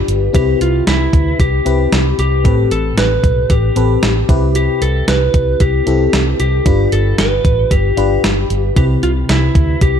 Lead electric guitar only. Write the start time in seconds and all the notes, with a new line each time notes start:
Already playing: G4
0.35 G4
0.62 F4
0.88 E4
1.40 G4
2.19 G4
2.72 A4
2.98 B4
3.51 G4
4.56 G4
4.82 A4
5.08 B4
5.61 G4
6.40 G4
6.93 A4
7.19 B4
7.71 G4
8.77 G4
9.03 F4
9.30 E4
9.82 G4